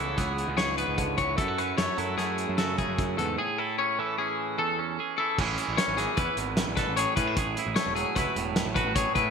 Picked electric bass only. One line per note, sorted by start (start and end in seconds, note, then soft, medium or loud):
0.00 0.15 C#2 medium
0.18 0.44 C#2 medium
0.48 0.83 C#2 medium
0.88 1.14 C#2 medium
1.18 1.35 C#2 medium
1.38 1.73 F#2 medium
1.79 1.87 F#2 medium
1.98 2.16 F#2 medium
2.18 2.44 F#2 medium
2.49 2.84 F#2 medium
2.88 3.14 F#2 medium
3.18 3.36 E2 medium
5.38 5.56 A1 medium
5.68 5.77 A1 medium
5.88 6.05 G#1 medium
6.17 6.26 E2 medium
6.37 6.63 G#1 medium
6.67 6.85 A1 medium
6.88 7.05 A1 medium
7.17 7.34 A2 medium
7.37 7.54 A1 medium
7.67 7.75 A1 medium
7.86 8.04 E1 medium
8.16 8.25 C#2 medium
8.36 8.62 E1 medium
8.66 8.83 A1 medium
8.86 9.03 A1 medium
9.16 9.30 A2 medium